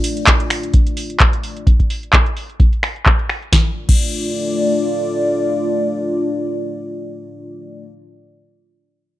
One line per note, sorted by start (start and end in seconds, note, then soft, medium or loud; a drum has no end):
0.00 1.63 A3 medium
0.00 1.63 D4 medium
0.00 1.63 F4 medium
0.00 1.63 D5 medium
0.00 open hi-hat loud
0.17 closed hi-hat soft
0.27 kick loud
0.27 clap loud
0.27 closed hi-hat medium
0.40 closed hi-hat soft
0.50 finger snap medium
0.50 open hi-hat medium
0.63 closed hi-hat soft
0.74 kick loud
0.74 closed hi-hat medium
0.87 closed hi-hat soft
0.97 open hi-hat loud
1.10 closed hi-hat soft
1.20 kick loud
1.20 clap loud
1.20 closed hi-hat medium
1.33 closed hi-hat soft
1.43 open hi-hat medium
1.57 closed hi-hat soft
1.67 kick loud
1.67 closed hi-hat medium
1.80 kick medium
1.80 closed hi-hat soft
1.90 open hi-hat loud
2.03 closed hi-hat soft
2.13 kick loud
2.13 clap loud
2.13 closed hi-hat medium
2.26 closed hi-hat soft
2.37 open hi-hat medium
2.50 closed hi-hat soft
2.60 kick loud
2.60 closed hi-hat medium
2.73 closed hi-hat soft
2.83 finger snap medium
2.83 open hi-hat medium
2.96 closed hi-hat soft
3.06 kick loud
3.06 clap loud
3.06 closed hi-hat medium
3.19 closed hi-hat soft
3.30 finger snap medium
3.30 open hi-hat medium
3.42 closed hi-hat soft
3.52 7.85 A3 medium
3.52 7.85 D4 medium
3.52 7.85 F4 medium
3.52 7.85 D5 medium
3.52 kick loud
3.52 snare medium
3.89 kick loud
3.89 crash medium